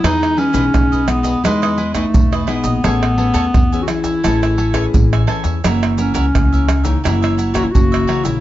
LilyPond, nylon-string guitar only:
\new Staff \with { instrumentName = "Nylon-string guitar" } { \time 4/4 \key e \major \tempo 4 = 86 << { <gis b dis'>8. <gis b dis'>8. <gis b dis'>8 <gis b dis'>8 r16 <b dis'>8. <gis b dis'>8 | <cis' gis' b'>16 r16 <cis' gis' b'>8 r16 <cis' gis' b'>8. <cis' gis' b'>8 r16 <cis' gis' b'>8. <cis' gis' b'>8 | <e ais cis'>4 <e ais cis'>8 r16 <e ais cis'>16 <e ais cis'>8 r16 <e ais cis'>16 <e ais cis'>8 <e ais cis'>8 | } \\ { e4 b,4 e4 b,4 | a4 e4 a4 e4 | fis,4 cis4 fis,4 cis4 | } >> }